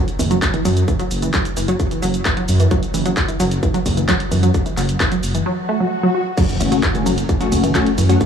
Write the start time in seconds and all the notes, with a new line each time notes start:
0.08 closed hi-hat, shaker
0.19 F#1 E3, kick, open hi-hat, shaker
0.31 F#3, closed hi-hat, shaker
0.42 kick, clap, closed hi-hat, shaker
0.54 E3, closed hi-hat
0.65 F#2 F#3, open hi-hat, shaker
0.77 closed hi-hat, shaker
0.88 E3, kick, closed hi-hat, shaker
0.99 F#3, closed hi-hat, shaker
1.11 F#1, open hi-hat, shaker
1.22 E3, closed hi-hat, shaker
1.34 F#3, kick, clap, closed hi-hat, shaker
1.45 closed hi-hat, shaker
1.57 F#1 E3, open hi-hat, shaker
1.68 F#3, closed hi-hat, shaker
1.80 kick, closed hi-hat, shaker
1.91 E3, closed hi-hat, shaker
2.02 F#1 F#3, open hi-hat, shaker
2.14 closed hi-hat, shaker
2.25 E3, kick, clap, closed hi-hat, shaker
2.37 F#3, closed hi-hat
2.48 F#2, open hi-hat, shaker
2.60 E3, closed hi-hat, shaker
2.71 F#3, kick, closed hi-hat, shaker
2.83 closed hi-hat, shaker
2.94 F#1 E3, open hi-hat, shaker
3.06 F#3, closed hi-hat, shaker
3.17 kick, clap, closed hi-hat, shaker
3.28 E3, closed hi-hat, shaker
3.40 F#1 F#3, open hi-hat, shaker
3.51 closed hi-hat, shaker
3.63 E3, kick, closed hi-hat, shaker
3.74 F#3, closed hi-hat, shaker
3.86 F#1, kick, open hi-hat, shaker
3.97 E3, closed hi-hat, shaker
4.09 F#3, kick, clap, closed hi-hat, shaker
4.20 closed hi-hat
4.31 F#2 E3, open hi-hat, shaker
4.43 F#3, closed hi-hat, shaker
4.54 kick, closed hi-hat, shaker
4.66 E3, closed hi-hat, shaker
4.77 F#1 F#3, clap, open hi-hat, shaker
4.89 closed hi-hat, shaker
5.00 E3, kick, clap, closed hi-hat, shaker
5.12 F#3, closed hi-hat, shaker
5.23 F#1, open hi-hat, shaker
5.35 E3, closed hi-hat, shaker
5.46 F#3, swell
5.69 A3
5.80 F#3
6.03 F#3
6.15 F#4
6.37 F#3, kick, closed hi-hat, crash, impact, shaker
6.49 closed hi-hat, shaker
6.60 F#1 E3 A3 C#4 F#4, open hi-hat, ride, shaker
6.72 F#3, closed hi-hat, shaker
6.83 kick, clap, closed hi-hat, shaker
6.95 E3 A3 C#4 F#4, closed hi-hat, shaker
7.06 F#1 F#3, open hi-hat, ride, shaker
7.18 closed hi-hat, shaker
7.29 E3, kick, closed hi-hat, shaker
7.40 F#3 A3 C#4 F#4, closed hi-hat, shaker
7.52 F#1, kick, open hi-hat, ride, shaker
7.63 E3, closed hi-hat, shaker
7.75 F#3 A3 C#4 F#4, kick, clap, closed hi-hat, shaker
7.87 closed hi-hat
7.98 F#2 E3, open hi-hat, ride, shaker
8.09 F#3 A3 C#4 F#4, closed hi-hat, shaker
8.21 kick, closed hi-hat, shaker